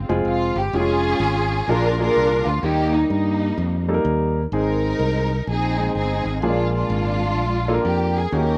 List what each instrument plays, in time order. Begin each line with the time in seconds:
Already playing: string section G#3 C4
0.09 fingered electric bass F1, upright piano G#3 C4 F4 G#4
0.25 fingered electric bass F1, string section F4
0.56 fingered electric bass G1, string section G4
0.73 fingered electric bass F1, upright piano G#3 C#4 F4 G4, string section C#4 F4 G#4
0.79 upright piano G#4
1.20 fingered electric bass G#1
1.68 fingered electric bass A#1, upright piano A#2 A#3 D4 F4 G#4, string section D4 F4 A#4
1.99 upright piano A#3 D4 F4 G#4, string section D4 F4 A#4
2.16 fingered electric bass C2
2.46 fingered electric bass D2, string section F4
2.63 fingered electric bass D#2, upright piano D#3 G3 A#3 D#4 G4, string section A#3 D#4 G4
2.94 string section D#4
3.10 fingered electric bass G2, string section G3 A#3 D#4
3.58 fingered electric bass F2
3.88 upright piano G3 A#3 D#4 A4
3.94 upright piano A#4
4.05 fingered electric bass D#2
4.52 fingered electric bass G#1, upright piano G#2 G#3 C4 D#4 G#4, string section D#4 A#4
4.99 fingered electric bass C2
5.47 fingered electric bass A#1, string section C4 D#4 G#4
5.78 upright piano G#3 C4 D#4 G#4
5.95 fingered electric bass G1, string section C4 D#4 G#4
6.25 fingered electric bass G#1
6.42 fingered electric bass A#1, upright piano A#2 A#3 C#4 F4 G#4, string section G#3 D4
6.46 upright piano D4, string section F4
6.75 string section G#3 D4 F4
6.90 fingered electric bass G#1
7.37 fingered electric bass A#1
7.68 upright piano A#3 D4 F4 A4
7.74 upright piano A#4
7.85 fingered electric bass F2, string section G4
8.18 string section G#4
8.32 fingered electric bass D#2, upright piano D#3 A#3 C#4 D#4 F#4, string section C#4 G4 A#4
8.38 upright piano G4